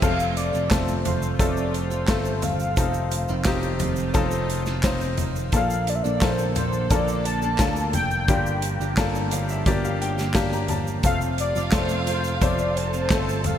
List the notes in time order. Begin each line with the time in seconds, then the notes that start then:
0.01 F1 C3 F3 A3 C4 F4 A4 F5, kick, crash, shaker
0.20 shaker
0.37 D5, closed hi-hat, shaker
0.53 F1 F3 C4 F4 A4, shaker
0.71 F1 A3 C4 F4 A4 C5, kick, snare, clap, closed hi-hat, shaker
0.88 shaker
1.05 F3 C4 F4 A4 C5, closed hi-hat, floor tom, shaker
1.22 shaker
1.39 F1 F3 A3 C4 F4 A4 D5, kick, closed hi-hat, shaker
1.57 shaker
1.74 C5, closed hi-hat
1.90 F3 C4 F4 A4, shaker
2.08 G1 A3 C4 F4 A4, kick, snare, clap, closed hi-hat, shaker
2.25 shaker
2.41 G1 F3 C4 F4 A4 F5, closed hi-hat, floor tom, shaker
2.60 shaker
2.76 F1 C3 D#3 F3 A3 C4 D#4 F4 A4, kick, closed hi-hat, shaker
2.94 shaker
3.11 closed hi-hat, shaker
3.28 F1 F3 C4 D#4 A4, shaker
3.44 C4 D#4 F4 G4, kick, snare, clap, closed hi-hat, shaker
3.63 shaker
3.79 F3 C4 D#4 A4, closed hi-hat, floor tom, shaker
3.96 shaker
4.14 F1 F3 C4 D#4 F4 A4, kick, closed hi-hat, shaker
4.31 shaker
4.50 closed hi-hat
4.66 F3 C4 D#4 A4, snare, shaker
4.83 C4 D#4 F4 C5, kick, snare, clap, closed hi-hat, shaker
5.01 shaker
5.17 F3 C4 D#4 A4, closed hi-hat, floor tom, shaker
5.36 shaker
5.52 A#1 A#2 D3 F3 A#3 D4 F4 A4 F5, kick, closed hi-hat, shaker
5.70 shaker
5.87 D5, closed hi-hat, shaker
5.95 E5
6.03 A#1 A#2 D3 F3 A#3 D4 A4 D5, shaker
6.15 D5
6.21 A#1 A#3 D4 F4 A4 C5, kick, snare, clap, closed hi-hat, shaker
6.38 shaker
6.55 A#2 D3 F3 A#3 D4 A4 C5, closed hi-hat, floor tom, shaker
6.73 shaker
6.90 A#1 A#2 D3 F3 A#3 D4 F4 A4 D5, kick, closed hi-hat, shaker
7.08 shaker
7.25 A5, closed hi-hat
7.42 A#2 D3 F3 A#3 D4 A4, shaker
7.58 D2 A#3 D4 F4 A4, kick, snare, clap, closed hi-hat, shaker
7.76 shaker
7.93 F1 F3 A#3 D4 A4 G5, closed hi-hat, floor tom, shaker
8.11 shaker
8.28 G1 G2 D3 F3 A#3 D4 F4 G4, kick, closed hi-hat, shaker
8.46 shaker
8.62 closed hi-hat, shaker
8.80 G1 G2 D3 F3 A#3 D4 G4, shaker
8.97 G1 A#3 D4 F4 A4, kick, snare, clap, closed hi-hat, shaker
9.15 shaker
9.31 G2 D3 F3 A#3 D4 G4 F5, closed hi-hat, shaker
9.49 E5, shaker
9.65 G1 G2 D3 F3 A#3 D4 F4 G4 D5, kick, closed hi-hat, shaker
9.85 F5, shaker
10.01 G5, closed hi-hat
10.18 G2 D3 F3 A#3 D4 G4, snare, shaker
10.34 A#3 D4 F4 G4 A5, kick, snare, clap, closed hi-hat, shaker
10.53 A#5, shaker
10.68 F3 A#3 D4 G4 A5, closed hi-hat, floor tom, shaker
10.87 shaker
11.03 F1 C3 F3 A3 C4 F4 A4 F5, kick, closed hi-hat, shaker
11.21 shaker
11.38 D5, closed hi-hat, shaker
11.55 F1 F3 C4 F4 A4, shaker
11.71 F1 A3 C4 F4 A4 C5, kick, snare, clap, closed hi-hat, shaker
11.89 shaker
12.07 F3 C4 F4 A4 C5, closed hi-hat, shaker
12.24 shaker
12.41 F1 F3 A3 C4 F4 A4 C5 D5, kick, closed hi-hat, shaker
12.59 shaker
12.76 A4 C5 A5, closed hi-hat
12.93 F3 C4 F4 A4, shaker
13.10 G1 A3 C4 F4 A4, kick, snare, clap, closed hi-hat, shaker
13.29 shaker
13.44 G1 F3 C4 F4 A4 F5, closed hi-hat, floor tom, shaker